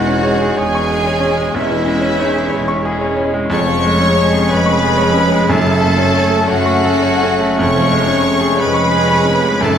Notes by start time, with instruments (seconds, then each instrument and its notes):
Already playing: double bass section E1, cello section E2, grand piano E2 E3 G#3, viola section G#3 C#4, bassoon G#3, clarinet D#4, violin section F#4 F#5, oboe F#4, flute section F#5
0.07 grand piano C#4
0.23 french horn section G#3 C#4, grand piano C#5
0.41 grand piano G#4
0.57 double bass section E1, cello section E2, violin section G#4 G#5, oboe G#4, grand piano C#5, flute section G#5
0.75 grand piano C#6
0.89 viola section G#3 C#4, grand piano G#4
1.06 grand piano C#5
1.20 french horn section G#3 C#4, grand piano C#4
1.37 grand piano G#3
1.54 double bass section E1, grand piano E2, cello section E2, bassoon G#3, clarinet C#4, violin section E4 E5, oboe E4, flute section E5
1.71 grand piano E3
1.85 viola section G#3 C#4, grand piano G#3, clarinet C#4
2.01 grand piano C#4
2.19 french horn section G#3 C#4, clarinet D#4, grand piano C#5
2.35 grand piano G#4
2.49 cello section E2, clarinet E4, grand piano C#5
2.53 double bass section E1, bassoon G#3
2.68 grand piano C#6
2.84 viola section G#3 C#4, grand piano G#4
3.01 grand piano C#5
3.17 french horn section G#3 C#4, grand piano C#4
3.34 grand piano G#3
3.50 double bass section F1, grand piano F2, cello section F2, french horn section G#3 C#4, bassoon G#3, clarinet C#4, oboe C#5, violin section C#5 C#6, flute section C#6
3.66 grand piano F3
3.83 grand piano G#3, viola section G#3 C#4
4.01 grand piano C#4
4.16 grand piano C#5
4.32 grand piano G#4
4.49 double bass section F1, cello section F2, violin section B4 B5, oboe B4, grand piano C#5, flute section B5
4.66 grand piano C#6
4.83 viola section G#3 C#4, grand piano G#4
4.98 grand piano C#5
5.14 grand piano C#4
5.32 grand piano G#3
5.48 double bass section F#1, grand piano F#2, timpani F#2, cello section F#2, viola section A3 C#4, bassoon A3, french horn section A3, violin section A4 A5, oboe A4, flute section A5
5.65 grand piano C#3
5.81 grand piano A3, viola section A3 C#4
5.98 grand piano C#4
6.15 grand piano C#5
6.32 grand piano A4
6.48 double bass section F#1, cello section F#2, violin section F#4 F#5, oboe F#4, grand piano C#5, flute section F#5
6.66 grand piano C#6
6.84 viola section A3 C#4, grand piano A4
7.03 grand piano C#5
7.22 grand piano C#4
7.41 grand piano A3
7.58 double bass section F1, grand piano F2, cello section F2, french horn section G#3, violin section C#5 C#6, oboe C#5, flute section C#6
7.76 grand piano F3
7.92 grand piano G#3, viola section G#3 C#4
8.07 grand piano C#4
8.22 grand piano C#5
8.41 grand piano G#4
8.57 double bass section F1, cello section F2, bassoon G#3, violin section B4, oboe B4, grand piano C#5, flute section B5
8.62 violin section B5
8.74 grand piano C#6
8.91 viola section G#3 C#4, grand piano G#4
9.08 grand piano C#5
9.25 grand piano C#4
9.43 grand piano G#3
9.61 double bass section F#1, grand piano F#2, timpani F#2, cello section F#2, french horn section A3 C#4, viola section A3 C#4, bassoon A3, clarinet C#4, oboe A4, violin section A4 A5, flute section A5